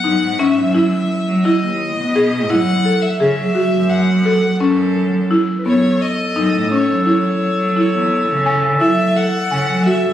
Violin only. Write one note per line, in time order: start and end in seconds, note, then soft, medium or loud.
0.00 0.40 F#5 medium
0.39 0.74 E5 medium
0.75 1.46 E5 medium
1.44 2.52 D#5 medium
2.50 3.04 F#5 medium
3.02 3.19 E5 medium
3.19 3.91 E5 medium
3.90 4.59 F#5 medium
4.60 5.26 A4 medium
5.66 6.03 C#5 medium
6.01 6.71 D#5 medium
6.72 7.04 C#5 medium
7.07 7.73 C#5 medium
7.77 8.43 C#5 medium
8.81 9.18 E5 medium
9.17 9.85 F#5 medium
9.86 10.12 E5 medium